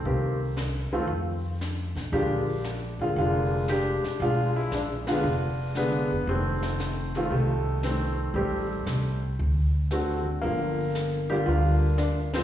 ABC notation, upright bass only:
X:1
M:4/4
L:1/8
Q:"Swing" 1/4=116
K:Fmix
V:1 name="Upright bass" clef=bass
C,,3 z F,,3 A,,, | B,,,3 _A,,, F,,,3 z | =B,,,2 _B,,,2 F,,,3 _G,,, | F,,,4 C,,4 |
A,,,2 C,,2 D,,3 z | G,,,4 D,,3 _G,,, |]